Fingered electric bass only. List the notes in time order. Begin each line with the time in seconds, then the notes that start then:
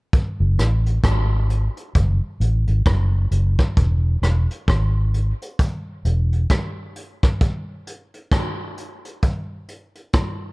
0.40 F#1
0.58 A1
1.03 G#1
1.95 F#1
2.40 A1
2.68 G#1
2.86 F#1
3.31 F#1
3.77 E1
4.22 E1
4.68 G#1
6.05 E1